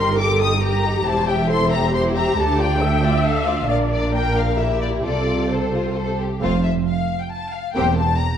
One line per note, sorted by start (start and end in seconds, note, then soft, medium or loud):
0.00 1.03 G1 soft
0.00 1.03 G2 medium
0.00 0.20 D#4 soft
0.00 0.18 G4 soft
0.00 0.20 A#4 medium
0.00 0.19 C6 medium
0.19 0.41 G4 soft
0.19 0.63 A4 medium
0.19 0.42 A#4 soft
0.19 0.41 D6 medium
0.41 0.63 D#4 soft
0.41 0.62 G4 soft
0.41 0.63 D#6 medium
0.63 0.83 G4 soft
0.63 1.48 G4 medium
0.63 0.83 A#4 soft
0.63 1.05 A#5 medium
0.85 1.06 D#4 soft
0.85 1.06 G4 soft
1.06 2.34 E1 medium
1.06 2.34 E2 medium
1.06 1.26 E4 soft
1.06 1.26 C5 soft
1.06 1.28 A5 medium
1.28 1.50 G4 soft
1.28 1.50 E5 soft
1.28 1.50 G5 medium
1.49 1.71 E4 soft
1.49 1.93 A4 medium
1.49 1.71 C5 soft
1.49 1.71 C6 medium
1.71 1.94 G4 soft
1.71 1.94 E5 soft
1.71 1.93 A#5 medium
1.94 2.14 E4 soft
1.94 2.79 G4 medium
1.94 2.14 C5 soft
1.94 2.02 C6 medium
2.16 2.37 G4 soft
2.16 2.37 E5 soft
2.16 2.37 A#5 medium
2.37 3.66 D2 medium
2.37 3.67 D2 medium
2.37 2.58 D4 soft
2.37 2.58 A4 soft
2.37 2.60 A5 medium
2.60 2.82 F4 soft
2.60 2.82 D5 soft
2.60 3.25 G5 medium
2.81 3.03 D4 soft
2.81 3.03 A4 soft
2.81 3.69 E5 medium
3.03 3.25 F4 soft
3.03 3.25 D5 soft
3.25 3.45 D4 soft
3.25 3.46 A4 soft
3.25 3.68 F5 medium
3.47 3.69 F4 soft
3.47 3.69 D5 soft
3.68 5.00 A#1 soft
3.68 5.00 A#2 soft
3.68 4.54 D4 soft
3.68 4.99 A#4 soft
3.68 4.14 D5 soft
3.68 3.77 F5 medium
3.92 4.13 D5 medium
4.13 4.57 A#4 soft
4.13 4.36 G5 medium
4.37 4.59 F5 medium
4.57 5.02 E4 soft
4.57 5.04 G4 soft
4.57 4.81 E5 medium
4.81 4.89 D5 soft
5.03 6.19 C2 soft
5.03 6.19 C3 soft
5.03 5.49 F4 soft
5.03 5.49 A4 soft
5.03 6.19 A4 soft
5.03 5.49 D5 medium
5.50 5.71 A4 soft
5.50 6.19 C5 soft
5.73 5.96 F4 soft
5.95 6.18 A4 medium
6.20 6.42 G4 soft
6.41 6.79 F1 soft
6.41 6.79 F2 soft
6.41 6.62 A3 soft
6.41 6.62 C4 soft
6.41 6.63 F4 soft
6.41 6.63 C5 soft
6.41 6.62 F5 medium
6.64 6.72 E5 soft
6.87 7.19 F5 medium
7.21 7.31 G5 soft
7.31 7.53 A5 medium
7.52 7.75 F5 medium
7.75 8.12 E1 medium
7.75 8.12 E2 medium
7.75 7.96 A#3 soft
7.75 7.96 C4 soft
7.75 7.96 G4 soft
7.75 7.96 C5 soft
7.75 7.97 G5 medium
7.97 8.19 A5 medium
8.19 8.38 A#5 medium